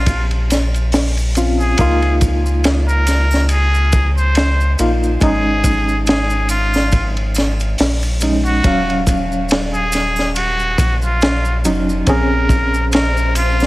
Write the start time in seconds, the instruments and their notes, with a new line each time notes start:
Already playing: sub bass A#1, reed electric piano C4 C#4 G#4, muted trumpet F4
0.06 kick, ride, maracas
0.31 ride
0.50 snare, ride, triangle, maracas
0.74 ride, maracas
0.92 snare, open hi-hat, maracas
1.17 ride, maracas
1.35 reed electric piano C4 C#4 F4, ride, maracas
1.60 muted trumpet G#4, maracas
1.78 sub bass C#2, reed electric piano A#3 D#4 F4, kick, ride, maracas
2.02 ride
2.21 kick, ride, maracas
2.46 maracas
2.64 snare, ride, maracas
2.88 muted trumpet A#4, maracas
3.07 snare, ride, triangle, maracas
3.31 snare, triangle, maracas
3.49 muted trumpet G#4, ride, maracas
3.74 maracas
3.92 kick, ride, maracas
4.17 muted trumpet C5, maracas
4.35 snare, ride, maracas
4.60 maracas
4.79 sub bass A#1, reed electric piano A#3 D#4 F4, ride, maracas
5.03 maracas
5.21 sub bass G#1, reed electric piano G#3 C#4 D#4, muted trumpet G#4, kick, ride, maracas
5.64 kick, ride, maracas
5.88 maracas
6.06 muted trumpet G#4, snare, ride, maracas
6.30 maracas
6.49 muted trumpet F4, ride, triangle, maracas
6.73 snare, triangle, maracas
6.92 kick, ride, maracas
7.17 ride
7.34 snare, ride, triangle, maracas
7.60 ride, maracas
7.78 sub bass A#1, snare, open hi-hat, maracas
8.02 ride, maracas
8.21 reed electric piano G#3 C#4 D#4, ride, maracas
8.45 muted trumpet F#4, maracas
8.64 sub bass D#1, reed electric piano F#3 C#4 F5, kick, ride, maracas
8.90 ride
9.07 kick, ride, maracas
9.32 maracas
9.49 snare, ride, maracas
9.74 muted trumpet G#4, maracas
9.92 snare, ride, triangle, maracas
10.16 snare, triangle, maracas
10.35 muted trumpet F#4, ride, maracas
10.60 maracas
10.78 sub bass A#1, kick, ride, maracas
11.02 muted trumpet F4, maracas
11.21 snare, ride, maracas
11.45 maracas
11.64 sub bass F1, reed electric piano F#3 C#4 D#4, ride, maracas
11.89 maracas
12.07 sub bass A#1, synth texture C4 C5, reed electric piano C4 C#4 G#4, muted trumpet A#4, kick, ride, maracas
12.49 kick, ride, maracas
12.74 maracas
12.92 muted trumpet A#4, snare, ride, maracas
13.17 maracas
13.35 muted trumpet F4, ride, triangle, maracas
13.60 snare, triangle, maracas